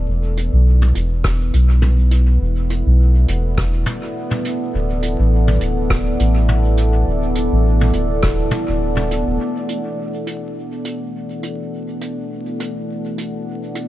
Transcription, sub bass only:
0.07 0.50 E1 medium
0.52 0.92 B1 medium
0.95 1.51 E1 loud
1.53 2.38 B1 medium
2.41 2.83 E1 medium
2.86 3.26 B1 medium
3.28 3.84 E1 loud
4.74 5.16 D1 medium
5.19 5.59 A1 medium
5.61 6.17 D1 medium
6.19 7.04 A1 medium
7.07 7.49 D1 loud
7.52 7.92 A1 medium
7.94 8.50 D1 loud
8.68 9.23 D1 medium
9.26 9.38 D1 loud

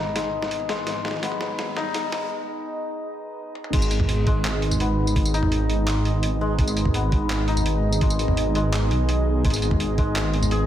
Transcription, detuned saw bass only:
0.00 0.41 G#1 loud
0.42 0.86 G#1 medium
0.87 2.30 G#1 loud
3.73 5.42 G#1 medium
5.43 6.13 G#1 loud
6.14 6.58 G#1 medium
6.59 8.27 G#1 loud
8.28 8.91 G#1 loud
8.91 9.44 B1 medium
9.45 10.66 G#1 loud

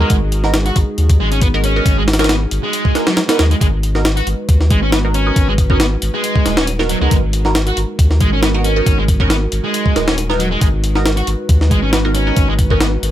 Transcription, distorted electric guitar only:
0.00 0.09 G#3 loud
0.10 0.16 G#3 medium
0.66 0.76 F#4 medium
1.20 1.29 G#3 medium
1.32 1.39 C#4 medium
1.42 1.47 B3 medium
1.64 1.96 C#4 medium
1.98 2.02 G#3 medium
2.20 2.27 C#4 medium
2.30 2.35 B3 medium
2.63 3.06 G#3 loud
3.07 3.17 F#3 medium
3.29 3.38 B3 medium
3.39 3.44 G#3 loud
3.51 3.55 G#3 medium
3.61 3.66 G#3 medium
4.16 4.26 F#4 medium
4.70 4.79 G#3 medium
4.82 4.89 C#4 medium
4.92 4.97 B3 medium
5.14 5.47 C#4 medium
5.48 5.53 G#3 medium
5.70 5.77 C#4 medium
5.80 5.85 B3 medium
6.14 6.57 G#3 loud
6.58 6.65 C#4 medium
6.90 6.98 F#3 loud
7.02 7.11 G#3 loud
7.12 7.17 G#3 medium
7.67 7.77 F#4 medium
8.21 8.29 G#3 medium
8.33 8.40 C#4 medium
8.43 8.48 B3 medium
8.65 8.97 C#4 medium
8.99 9.03 G#3 medium
9.20 9.27 C#4 medium
9.30 9.35 B3 medium
9.64 10.07 G#3 loud
10.07 10.15 C#4 medium
10.40 10.48 F#3 loud
10.51 10.60 G#3 loud
10.62 10.67 G#3 medium
11.17 11.27 F#4 medium
11.71 11.79 G#3 medium
11.83 11.90 C#4 medium
11.93 11.98 B3 medium
12.15 12.48 C#4 medium
12.49 12.53 G#3 medium
12.70 12.78 C#4 medium
12.81 12.86 B3 medium

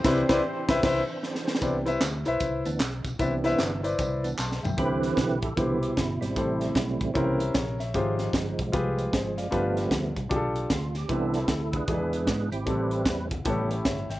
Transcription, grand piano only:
0.04 0.22 C3 medium
0.04 0.21 E4 loud
0.04 0.22 B4 medium
0.04 0.22 C5 medium
0.04 0.22 D5 medium
0.29 0.39 E4 loud
0.29 0.39 B4 loud
0.29 0.39 C5 loud
0.29 0.40 D5 loud
0.69 0.78 E4 loud
0.69 0.79 B4 loud
0.69 0.79 C5 loud
0.69 0.79 E5 loud
0.83 1.00 E4 loud
0.83 1.00 B4 medium
0.83 1.01 C5 medium
0.83 1.01 E5 loud
1.61 2.22 C3 medium
1.61 1.74 E4 medium
1.61 1.75 B4 medium
1.61 1.75 C5 medium
1.61 1.75 D5 medium
1.86 2.02 E4 medium
1.86 2.02 B4 medium
1.86 2.02 C5 medium
1.86 2.03 E5 medium
2.26 2.66 E4 medium
2.26 2.67 B4 medium
2.26 2.67 C5 medium
2.26 2.67 E5 medium
3.19 3.80 C3 medium
3.19 3.32 E4 medium
3.19 3.33 B4 medium
3.19 3.33 C5 medium
3.19 3.33 E5 medium
3.44 3.60 E4 medium
3.44 3.60 B4 medium
3.44 3.60 C5 medium
3.44 3.61 E5 loud
3.83 4.24 E4 medium
3.83 4.25 B4 medium
3.83 4.25 C5 medium
3.83 4.25 D5 medium
4.38 4.62 A5 medium
4.38 4.62 C6 medium
4.63 5.01 E5 soft
4.63 5.01 G5 medium
4.77 5.39 C3 medium
4.77 5.19 E4 medium
4.77 5.19 G4 medium
4.77 5.19 B4 medium
4.77 5.19 C5 medium
5.57 5.98 E4 medium
5.57 5.98 G4 medium
5.57 5.99 B4 medium
5.57 5.99 C5 medium
6.36 6.97 A2 medium
6.36 6.77 E4 medium
6.36 6.78 G4 medium
6.36 6.78 A4 medium
6.36 6.78 C5 medium
7.14 7.75 C3 medium
7.14 7.55 C#4 medium
7.14 7.56 E4 medium
7.14 7.54 A#4 medium
7.14 7.55 C5 medium
7.54 7.79 A#4 medium
7.54 7.78 C#5 medium
7.80 8.18 C#5 soft
7.80 8.17 E5 medium
7.94 8.55 G#2 medium
7.94 8.35 F4 medium
7.94 8.35 G4 medium
7.94 8.36 G#4 medium
7.94 8.36 C5 medium
8.72 9.14 F4 medium
8.72 9.13 G4 medium
8.72 9.12 G#4 medium
8.72 9.13 B4 medium
9.13 9.37 G#4 medium
9.13 9.36 C5 medium
9.38 9.75 D5 medium
9.38 9.75 F5 medium
9.51 10.12 G2 medium
9.51 9.92 D4 medium
9.51 9.92 F4 medium
9.51 9.93 G4 medium
9.51 9.93 B4 medium
10.29 10.71 D4 medium
10.29 10.71 F4 medium
10.29 10.72 G4 medium
10.29 10.37 G#4 medium
10.36 10.74 A4 medium
11.09 11.70 C3 medium
11.09 11.50 C4 medium
11.09 11.50 E4 medium
11.09 11.51 G4 medium
11.09 11.51 B4 medium
11.88 12.49 E3 medium
11.88 12.29 D4 medium
11.88 12.29 E4 medium
11.88 12.29 G#4 medium
11.88 11.95 A4 medium
11.94 12.32 B4 medium
12.66 13.27 A2 medium
12.66 13.07 C4 medium
12.66 13.08 E4 medium
12.66 13.08 G4 medium
12.66 13.08 A4 medium
13.45 14.06 A2 medium
13.45 13.51 B3 medium
13.45 13.87 E4 medium
13.45 13.87 G4 medium
13.45 13.69 A4 medium
13.50 13.89 C#4 medium
13.85 14.09 C#5 medium
13.85 14.09 E5 medium
14.10 14.20 E5 soft
14.10 14.20 G5 medium

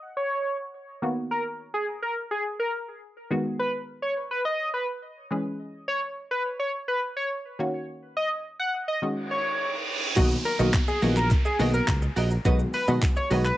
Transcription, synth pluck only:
1.02 3.27 D#3 medium
1.02 3.27 A#3 medium
1.02 3.27 B3 medium
1.02 3.27 F#4 medium
3.31 5.27 D#3 medium
3.31 5.27 G#3 medium
3.31 5.27 B3 medium
3.31 5.27 F#4 medium
5.31 7.55 E3 medium
5.31 7.56 G#3 medium
5.31 7.56 C#4 medium
5.31 7.56 G#4 medium
7.59 8.99 D#3 medium
7.59 9.00 A#3 medium
7.59 9.00 C#4 medium
7.59 9.00 F#4 medium
9.02 10.14 D#3 medium
9.02 10.14 G#3 medium
9.02 10.15 C#4 medium
9.02 10.15 F#4 medium
10.17 10.38 D#3 medium
10.17 10.38 F#3 medium
10.17 10.38 A#3 medium
10.17 10.38 B3 medium
10.17 10.38 F#4 loud
10.59 10.80 D#3 medium
10.59 10.80 F#3 medium
10.59 10.81 A#3 medium
10.59 10.81 B3 medium
10.59 10.81 F#4 medium
11.02 11.30 D#3 medium
11.02 11.30 F#3 medium
11.02 11.30 A#3 medium
11.02 11.30 B3 medium
11.02 11.30 F#4 medium
11.59 12.01 D#3 medium
11.59 12.01 F#3 medium
11.59 12.01 A#3 medium
11.59 12.01 B3 medium
11.59 12.01 F#4 medium
12.45 12.66 D#3 loud
12.45 12.66 F#3 medium
12.45 12.66 G#3 medium
12.45 12.66 B3 medium
12.45 12.66 F#4 loud
12.88 13.09 D#3 medium
12.88 13.09 F#3 medium
12.88 13.09 G#3 medium
12.88 13.09 B3 medium
12.88 13.09 F#4 medium
13.31 13.57 D#3 medium
13.31 13.57 F#3 medium
13.31 13.57 G#3 medium
13.31 13.57 B3 medium
13.31 13.57 F#4 medium

